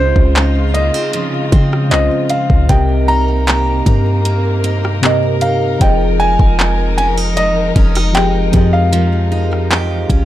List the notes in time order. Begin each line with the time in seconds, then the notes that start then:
Already playing: C#2 C#3 G#3 C4 C#4 D#4 F4 G#4 C5 D#5
0.16 C#2, kick
0.36 D#4, clap, closed hi-hat
0.74 A#3 D#5, closed hi-hat
0.94 C4
1.13 F3, closed hi-hat
1.52 C#3 C4, kick, closed hi-hat
1.73 cross-stick
1.89 C2 C#3 F3 C#4 F4 C5 D#5, clap, closed hi-hat
1.94 D#5
2.29 C4 F5, closed hi-hat
2.50 C#2, kick
2.67 C2 C3 A#3 C4 G4 A#4 G5, kick, closed hi-hat
2.72 D#5
3.08 D#4 A#5
3.47 G4, clap, closed hi-hat
3.86 G2 D#4, kick, closed hi-hat
4.25 A#3, closed hi-hat
4.64 D#4, closed hi-hat
4.85 cross-stick
5.01 C3 A#3 C4 G4 A#4, clap, closed hi-hat
5.06 D#5
5.41 D#4 F5, closed hi-hat
5.79 F1 F3 G#3 C4 D#4 F4 G#4 G5, kick, closed hi-hat
5.84 D#5
6.20 D#4 G#5
6.39 F1, kick
6.59 clap, closed hi-hat
6.98 C#4 G#5, closed hi-hat
7.17 D#4
7.37 G#3 D#5, closed hi-hat
7.76 F1 C#4, kick, closed hi-hat
7.95 D#4, cross-stick
8.13 F3 G#3 C4 G4 G#4 G5, clap, closed hi-hat
8.18 D#5
8.52 F2 F3 C4 G4 G#4, kick, closed hi-hat
8.57 D#5
8.73 F5
8.93 F3, closed hi-hat
9.32 D#4
9.53 cross-stick
9.71 G4, clap, closed hi-hat
10.10 C2 C#4 F4, kick, closed hi-hat